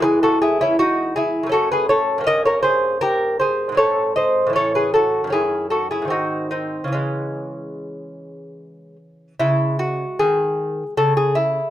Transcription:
<<
  \new Staff \with { instrumentName = "Lute" } { \time 3/4 \key cis \minor \tempo 4 = 78 <gis' b'>16 <fis' a'>16 <e' gis'>16 <cis' e'>16 <dis' fis'>8 <e' gis'>8 <fis' a'>16 <gis' b'>16 <a' cis''>8 | <ais' dis''>16 <ais' cis''>16 <gis' bis'>8 <g' ais'>8 <gis' bis'>8 <a' cis''>8 <bis' dis''>8 | <a' cis''>16 <gis' b'>16 <fis' a'>8 <e' gis'>8 <fis' a'>16 <e' gis'>16 <dis' fis'>8 <bis dis'>8 | <gis cis'>2~ <gis cis'>8 r8 |
e'8 fis'8 gis'4 a'16 gis'16 e'8 | }
  \new Staff \with { instrumentName = "Lute" } { \clef bass \time 3/4 \key cis \minor << { <e, e gis>2 <fis, a cis'>4 | <g, ais cis'>2 <gis, gis bis>4 | <a, e cis'>4 <fis, dis cis'>4 <gis, dis bis>4 | <cis e>2. |
gis2. | } \\ { r2. | r2. | r2. | r2. |
cis4 dis4 cis4 | } >> }
>>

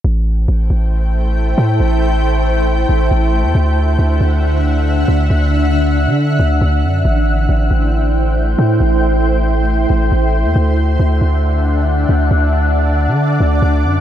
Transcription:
<<
  \new Staff \with { instrumentName = "Ambient pad" } { \time 4/4 \key a \dorian \tempo 4 = 137 << { <a e' g''>1~ | <a e' g''>1 | <d d' fis''>1~ | <d d' fis''>1 |
<a e' g''>1~ | <a e' g''>1 | <d d' fis''>1~ | <d d' fis''>1 | } \\ { c''1~ | c''1 | e''1~ | e''1 |
c''1~ | c''1 | e''1 | d''1 | } >> }
  \new Staff \with { instrumentName = "808-style bass" } { \clef bass \time 4/4 \key a \dorian a,,4 a,,8 a,,2 a,8 | a,,2~ a,,8 a,,8 a,,8. e,16 | d,4 d,8 d,2 d,8 | d,4.~ d,16 d8. d,8 d,8 fis,8 |
a,,4 a,,8 a,,2 a,8 | a,,2~ a,,8 a,,8 a,,8. e,16 | d,4 d,8 d,2 d,8 | d,4.~ d,16 d8. d,8 d,8 fis,8 | }
>>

